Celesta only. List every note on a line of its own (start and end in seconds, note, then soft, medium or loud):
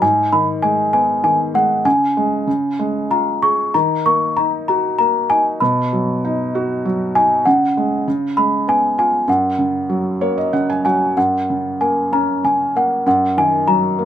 0.02 0.34 G#5 medium
0.33 0.46 B5 medium
0.62 0.92 G#5 medium
0.93 1.23 G#5 medium
1.24 1.38 G#5 medium
1.55 1.87 F#5 medium
1.85 3.14 G#5 medium
3.11 3.44 A#5 medium
3.42 3.75 C#6 medium
3.74 4.07 A#5 medium
4.06 4.38 C#6 medium
4.37 4.51 A#5 medium
4.68 4.97 A#5 medium
4.99 5.30 A#5 medium
5.30 5.44 G#5 medium
5.60 6.80 B5 medium
7.15 7.47 G#5 medium
7.45 8.02 F#5 medium
8.37 8.65 B5 medium
8.69 8.96 G#5 medium
8.99 9.29 G#5 medium
9.29 10.50 F#5 medium
10.85 11.18 G#5 medium
11.17 11.83 F#5 medium
11.81 12.13 G#5 medium
12.13 12.45 A#5 medium
12.45 12.76 G#5 medium
12.77 13.05 F#5 medium
13.08 13.39 F#5 medium
13.38 13.69 G#5 medium
13.68 14.05 A#5 medium